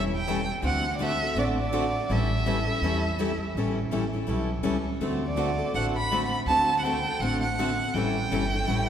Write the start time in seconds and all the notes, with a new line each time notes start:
Already playing: E1 E3 G3 C#4 E4 A4
0.15 G5
0.28 E3 G3 C#4 E4 A4
0.62 D2 D3 A3 C4 F#4 A4 F#5
0.96 D3 A3 C4 F#4 A4 D5
1.02 E5
1.23 C4 F#4 A4
1.35 A1 D3 A3 C4 F#4 A4 D5
1.60 D5
1.72 D3 A3 C4 F#4 A4
2.09 A1 E3 G3 C#4 E4 A4 E5
2.46 E3 G3 C#4 E4 A4
2.67 C#4 E4 A4
2.82 E2 E3 G3 C#4 E4 A4
3.19 E3 G3 C#4 E4 A4
3.55 A1 E3 G3 C#4 E4 A4
3.91 A1 E3 G3 C#4 E4 A4
4.13 C#4 E4 A4
4.27 B1 E3 G3 C#4 E4 A4
4.63 C#2 E3 G3 C#4 E4 A4
5.01 D2 D3 A3 C4 F#4 A4
5.27 D5
5.36 D3 A3 C4 F#4 A4
5.58 C4 F#4 A4
5.74 A1 D3 A3 C4 F#4 A4 F#5
5.97 B5
6.11 D3 A3 C4 F#4 A4
6.46 D2 D3 A3 C4 F#4 A4 A5
6.79 F#5 G5
6.86 D3 A3 C4 F#4 A4
7.07 C4 F#4 A4
7.20 A1 D3 A3 C4 F#4 A4 F#5
7.42 F#5
7.59 D3 A3 C4 F#4 A4
7.93 A1 E3 G3 C#4 E4 A4 G5
8.31 G1 E3 G3 C#4 E4 A4
8.53 C#4 E4 A4
8.66 A1 E3 G3 C#4 E4 A4